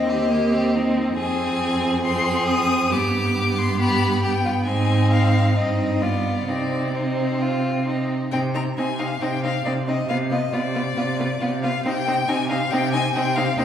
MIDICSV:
0, 0, Header, 1, 5, 480
1, 0, Start_track
1, 0, Key_signature, -3, "minor"
1, 0, Tempo, 436999
1, 1288, Time_signature, 4, 2, 24, 8
1, 5128, Tempo, 455581
1, 9448, Tempo, 437318
1, 14802, End_track
2, 0, Start_track
2, 0, Title_t, "Violin"
2, 0, Program_c, 0, 40
2, 0, Note_on_c, 0, 75, 60
2, 1050, Note_off_c, 0, 75, 0
2, 1286, Note_on_c, 0, 80, 74
2, 2197, Note_off_c, 0, 80, 0
2, 2246, Note_on_c, 0, 84, 74
2, 2711, Note_off_c, 0, 84, 0
2, 2721, Note_on_c, 0, 87, 79
2, 3206, Note_on_c, 0, 86, 69
2, 3223, Note_off_c, 0, 87, 0
2, 3939, Note_on_c, 0, 84, 69
2, 3955, Note_off_c, 0, 86, 0
2, 4162, Note_off_c, 0, 84, 0
2, 4168, Note_on_c, 0, 83, 71
2, 4635, Note_off_c, 0, 83, 0
2, 4641, Note_on_c, 0, 79, 65
2, 5109, Note_off_c, 0, 79, 0
2, 5116, Note_on_c, 0, 80, 67
2, 5585, Note_off_c, 0, 80, 0
2, 5593, Note_on_c, 0, 77, 69
2, 6069, Note_on_c, 0, 75, 56
2, 6084, Note_off_c, 0, 77, 0
2, 6548, Note_on_c, 0, 74, 53
2, 6563, Note_off_c, 0, 75, 0
2, 7026, Note_off_c, 0, 74, 0
2, 7032, Note_on_c, 0, 74, 58
2, 7530, Note_on_c, 0, 72, 45
2, 7546, Note_off_c, 0, 74, 0
2, 8497, Note_off_c, 0, 72, 0
2, 8971, Note_on_c, 0, 79, 65
2, 9055, Note_off_c, 0, 79, 0
2, 9217, Note_on_c, 0, 82, 57
2, 9301, Note_off_c, 0, 82, 0
2, 9454, Note_on_c, 0, 80, 63
2, 9687, Note_on_c, 0, 77, 56
2, 9704, Note_off_c, 0, 80, 0
2, 9936, Note_on_c, 0, 79, 63
2, 9953, Note_off_c, 0, 77, 0
2, 10171, Note_off_c, 0, 79, 0
2, 10178, Note_on_c, 0, 77, 61
2, 10409, Note_off_c, 0, 77, 0
2, 10415, Note_on_c, 0, 74, 58
2, 10503, Note_off_c, 0, 74, 0
2, 10662, Note_on_c, 0, 75, 57
2, 10893, Note_off_c, 0, 75, 0
2, 10898, Note_on_c, 0, 77, 61
2, 10986, Note_off_c, 0, 77, 0
2, 11138, Note_on_c, 0, 75, 60
2, 11379, Note_on_c, 0, 74, 65
2, 11396, Note_off_c, 0, 75, 0
2, 12583, Note_off_c, 0, 74, 0
2, 12589, Note_on_c, 0, 77, 58
2, 12821, Note_off_c, 0, 77, 0
2, 12831, Note_on_c, 0, 79, 74
2, 13299, Note_on_c, 0, 80, 75
2, 13315, Note_off_c, 0, 79, 0
2, 13533, Note_off_c, 0, 80, 0
2, 13540, Note_on_c, 0, 77, 71
2, 13769, Note_on_c, 0, 79, 80
2, 13785, Note_off_c, 0, 77, 0
2, 14005, Note_off_c, 0, 79, 0
2, 14011, Note_on_c, 0, 80, 79
2, 14235, Note_off_c, 0, 80, 0
2, 14242, Note_on_c, 0, 79, 75
2, 14483, Note_on_c, 0, 77, 74
2, 14500, Note_off_c, 0, 79, 0
2, 14719, Note_off_c, 0, 77, 0
2, 14725, Note_on_c, 0, 79, 82
2, 14802, Note_off_c, 0, 79, 0
2, 14802, End_track
3, 0, Start_track
3, 0, Title_t, "Violin"
3, 0, Program_c, 1, 40
3, 0, Note_on_c, 1, 63, 48
3, 104, Note_on_c, 1, 67, 48
3, 120, Note_off_c, 1, 63, 0
3, 336, Note_off_c, 1, 67, 0
3, 342, Note_on_c, 1, 67, 45
3, 824, Note_on_c, 1, 63, 44
3, 840, Note_off_c, 1, 67, 0
3, 1296, Note_off_c, 1, 63, 0
3, 1303, Note_on_c, 1, 68, 52
3, 2205, Note_off_c, 1, 68, 0
3, 2249, Note_on_c, 1, 68, 57
3, 3207, Note_on_c, 1, 67, 52
3, 3223, Note_off_c, 1, 68, 0
3, 4161, Note_off_c, 1, 67, 0
3, 4167, Note_on_c, 1, 67, 55
3, 4637, Note_off_c, 1, 67, 0
3, 4658, Note_on_c, 1, 67, 46
3, 4746, Note_off_c, 1, 67, 0
3, 4890, Note_on_c, 1, 65, 46
3, 4978, Note_off_c, 1, 65, 0
3, 5120, Note_on_c, 1, 63, 51
3, 6051, Note_off_c, 1, 63, 0
3, 6076, Note_on_c, 1, 63, 48
3, 6546, Note_on_c, 1, 65, 40
3, 6562, Note_off_c, 1, 63, 0
3, 7039, Note_on_c, 1, 63, 37
3, 7055, Note_off_c, 1, 65, 0
3, 7517, Note_off_c, 1, 63, 0
3, 7523, Note_on_c, 1, 63, 43
3, 8029, Note_on_c, 1, 65, 46
3, 8045, Note_off_c, 1, 63, 0
3, 8498, Note_off_c, 1, 65, 0
3, 8504, Note_on_c, 1, 63, 35
3, 8973, Note_off_c, 1, 63, 0
3, 8981, Note_on_c, 1, 63, 41
3, 9066, Note_off_c, 1, 63, 0
3, 9208, Note_on_c, 1, 63, 40
3, 9292, Note_off_c, 1, 63, 0
3, 9459, Note_on_c, 1, 63, 42
3, 9546, Note_off_c, 1, 63, 0
3, 9696, Note_on_c, 1, 63, 36
3, 9784, Note_off_c, 1, 63, 0
3, 9939, Note_on_c, 1, 63, 44
3, 10027, Note_off_c, 1, 63, 0
3, 10185, Note_on_c, 1, 63, 41
3, 10273, Note_off_c, 1, 63, 0
3, 10422, Note_on_c, 1, 63, 41
3, 10510, Note_off_c, 1, 63, 0
3, 10673, Note_on_c, 1, 63, 39
3, 10761, Note_off_c, 1, 63, 0
3, 10908, Note_on_c, 1, 65, 44
3, 10996, Note_off_c, 1, 65, 0
3, 11148, Note_on_c, 1, 65, 41
3, 11236, Note_off_c, 1, 65, 0
3, 11381, Note_on_c, 1, 65, 43
3, 11469, Note_off_c, 1, 65, 0
3, 11623, Note_on_c, 1, 65, 40
3, 11711, Note_off_c, 1, 65, 0
3, 11869, Note_on_c, 1, 65, 46
3, 11957, Note_off_c, 1, 65, 0
3, 12111, Note_on_c, 1, 65, 41
3, 12199, Note_off_c, 1, 65, 0
3, 12345, Note_on_c, 1, 65, 45
3, 12433, Note_off_c, 1, 65, 0
3, 12596, Note_on_c, 1, 65, 45
3, 12684, Note_off_c, 1, 65, 0
3, 12840, Note_on_c, 1, 63, 48
3, 12928, Note_off_c, 1, 63, 0
3, 13081, Note_on_c, 1, 63, 47
3, 13168, Note_off_c, 1, 63, 0
3, 13307, Note_on_c, 1, 63, 48
3, 13395, Note_off_c, 1, 63, 0
3, 13538, Note_on_c, 1, 63, 44
3, 13626, Note_off_c, 1, 63, 0
3, 13783, Note_on_c, 1, 63, 54
3, 13871, Note_off_c, 1, 63, 0
3, 14018, Note_on_c, 1, 63, 49
3, 14106, Note_off_c, 1, 63, 0
3, 14259, Note_on_c, 1, 63, 49
3, 14347, Note_off_c, 1, 63, 0
3, 14487, Note_on_c, 1, 63, 48
3, 14575, Note_off_c, 1, 63, 0
3, 14723, Note_on_c, 1, 63, 53
3, 14802, Note_off_c, 1, 63, 0
3, 14802, End_track
4, 0, Start_track
4, 0, Title_t, "Viola"
4, 0, Program_c, 2, 41
4, 0, Note_on_c, 2, 60, 44
4, 337, Note_on_c, 2, 58, 50
4, 354, Note_off_c, 2, 60, 0
4, 581, Note_on_c, 2, 60, 51
4, 597, Note_off_c, 2, 58, 0
4, 811, Note_off_c, 2, 60, 0
4, 817, Note_on_c, 2, 60, 49
4, 1283, Note_off_c, 2, 60, 0
4, 1298, Note_on_c, 2, 60, 47
4, 2203, Note_off_c, 2, 60, 0
4, 2250, Note_on_c, 2, 60, 55
4, 3215, Note_on_c, 2, 59, 53
4, 3232, Note_off_c, 2, 60, 0
4, 4163, Note_off_c, 2, 59, 0
4, 4170, Note_on_c, 2, 59, 51
4, 4638, Note_off_c, 2, 59, 0
4, 4665, Note_on_c, 2, 59, 50
4, 5138, Note_on_c, 2, 60, 52
4, 5154, Note_off_c, 2, 59, 0
4, 6065, Note_off_c, 2, 60, 0
4, 6071, Note_on_c, 2, 60, 43
4, 6554, Note_on_c, 2, 59, 42
4, 6570, Note_off_c, 2, 60, 0
4, 7046, Note_on_c, 2, 60, 36
4, 7062, Note_off_c, 2, 59, 0
4, 7528, Note_off_c, 2, 60, 0
4, 7534, Note_on_c, 2, 60, 40
4, 8740, Note_off_c, 2, 60, 0
4, 8983, Note_on_c, 2, 60, 43
4, 9067, Note_off_c, 2, 60, 0
4, 9217, Note_on_c, 2, 60, 40
4, 9301, Note_off_c, 2, 60, 0
4, 9463, Note_on_c, 2, 60, 41
4, 9551, Note_off_c, 2, 60, 0
4, 9700, Note_on_c, 2, 60, 37
4, 9788, Note_off_c, 2, 60, 0
4, 9940, Note_on_c, 2, 60, 41
4, 10028, Note_off_c, 2, 60, 0
4, 10194, Note_on_c, 2, 60, 40
4, 10281, Note_off_c, 2, 60, 0
4, 10433, Note_on_c, 2, 60, 41
4, 10521, Note_off_c, 2, 60, 0
4, 10670, Note_on_c, 2, 60, 40
4, 10758, Note_off_c, 2, 60, 0
4, 10912, Note_on_c, 2, 59, 43
4, 10999, Note_off_c, 2, 59, 0
4, 11146, Note_on_c, 2, 59, 40
4, 11234, Note_off_c, 2, 59, 0
4, 11384, Note_on_c, 2, 59, 46
4, 11471, Note_off_c, 2, 59, 0
4, 11629, Note_on_c, 2, 59, 39
4, 11717, Note_off_c, 2, 59, 0
4, 11861, Note_on_c, 2, 59, 46
4, 11948, Note_off_c, 2, 59, 0
4, 12114, Note_on_c, 2, 59, 44
4, 12202, Note_off_c, 2, 59, 0
4, 12358, Note_on_c, 2, 59, 44
4, 12446, Note_off_c, 2, 59, 0
4, 12599, Note_on_c, 2, 59, 44
4, 12687, Note_off_c, 2, 59, 0
4, 12835, Note_on_c, 2, 60, 49
4, 12923, Note_off_c, 2, 60, 0
4, 13075, Note_on_c, 2, 60, 46
4, 13163, Note_off_c, 2, 60, 0
4, 13309, Note_on_c, 2, 60, 47
4, 13396, Note_off_c, 2, 60, 0
4, 13550, Note_on_c, 2, 60, 46
4, 13638, Note_off_c, 2, 60, 0
4, 13797, Note_on_c, 2, 60, 51
4, 13884, Note_off_c, 2, 60, 0
4, 14038, Note_on_c, 2, 60, 44
4, 14125, Note_off_c, 2, 60, 0
4, 14269, Note_on_c, 2, 60, 52
4, 14357, Note_off_c, 2, 60, 0
4, 14505, Note_on_c, 2, 60, 54
4, 14593, Note_off_c, 2, 60, 0
4, 14741, Note_on_c, 2, 60, 55
4, 14802, Note_off_c, 2, 60, 0
4, 14802, End_track
5, 0, Start_track
5, 0, Title_t, "Cello"
5, 0, Program_c, 3, 42
5, 0, Note_on_c, 3, 39, 48
5, 1251, Note_off_c, 3, 39, 0
5, 1282, Note_on_c, 3, 41, 56
5, 3200, Note_on_c, 3, 43, 58
5, 3217, Note_off_c, 3, 41, 0
5, 5123, Note_on_c, 3, 44, 49
5, 5139, Note_off_c, 3, 43, 0
5, 6072, Note_on_c, 3, 43, 48
5, 6088, Note_off_c, 3, 44, 0
5, 7033, Note_off_c, 3, 43, 0
5, 7039, Note_on_c, 3, 48, 40
5, 8727, Note_off_c, 3, 48, 0
5, 8973, Note_on_c, 3, 48, 49
5, 9390, Note_off_c, 3, 48, 0
5, 9448, Note_on_c, 3, 48, 50
5, 9876, Note_off_c, 3, 48, 0
5, 9929, Note_on_c, 3, 48, 51
5, 10358, Note_off_c, 3, 48, 0
5, 10416, Note_on_c, 3, 48, 50
5, 10839, Note_off_c, 3, 48, 0
5, 10888, Note_on_c, 3, 48, 54
5, 11312, Note_off_c, 3, 48, 0
5, 11370, Note_on_c, 3, 48, 53
5, 11798, Note_off_c, 3, 48, 0
5, 11863, Note_on_c, 3, 48, 57
5, 12289, Note_off_c, 3, 48, 0
5, 12346, Note_on_c, 3, 48, 57
5, 12767, Note_off_c, 3, 48, 0
5, 12824, Note_on_c, 3, 48, 54
5, 13244, Note_off_c, 3, 48, 0
5, 13302, Note_on_c, 3, 48, 57
5, 13719, Note_off_c, 3, 48, 0
5, 13772, Note_on_c, 3, 48, 64
5, 14193, Note_off_c, 3, 48, 0
5, 14251, Note_on_c, 3, 48, 64
5, 14672, Note_off_c, 3, 48, 0
5, 14729, Note_on_c, 3, 39, 67
5, 14802, Note_off_c, 3, 39, 0
5, 14802, End_track
0, 0, End_of_file